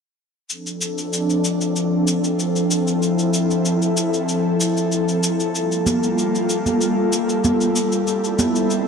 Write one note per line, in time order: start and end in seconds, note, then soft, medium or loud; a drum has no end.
0.50 5.51 F3 medium
0.50 5.51 C4 medium
0.50 2.69 D4 medium
0.50 8.88 A4 medium
0.50 cabasa soft
0.67 cabasa soft
0.81 cabasa medium
0.98 cabasa soft
1.13 cabasa soft
1.30 cabasa soft
1.44 cabasa medium
1.61 cabasa soft
1.76 cabasa soft
2.07 cabasa medium
2.24 cabasa soft
2.39 cabasa soft
2.56 cabasa soft
2.71 5.52 E4 medium
2.71 cabasa medium
2.87 cabasa soft
3.02 cabasa soft
3.19 cabasa soft
3.34 cabasa medium
3.50 cabasa soft
3.65 cabasa soft
3.82 cabasa soft
3.97 cabasa medium
4.14 cabasa soft
4.29 cabasa soft
4.60 cabasa medium
4.77 cabasa soft
4.92 cabasa soft
5.08 cabasa soft
5.23 cabasa medium
5.40 cabasa soft
5.54 8.88 G3 medium
5.54 8.05 A#3 medium
5.54 8.05 F4 medium
5.54 cabasa soft
5.72 cabasa soft
5.86 high conga medium
5.86 cabasa medium
6.03 cabasa soft
6.18 cabasa soft
6.35 cabasa soft
6.49 cabasa medium
6.66 high conga medium
6.66 cabasa soft
6.81 cabasa soft
7.13 cabasa medium
7.29 cabasa soft
7.44 high conga medium
7.44 cabasa soft
7.61 cabasa soft
7.76 cabasa medium
7.92 cabasa soft
8.07 8.88 C4 medium
8.07 8.88 E4 medium
8.07 cabasa soft
8.24 cabasa soft
8.39 high conga medium
8.39 cabasa medium
8.55 cabasa soft
8.70 cabasa soft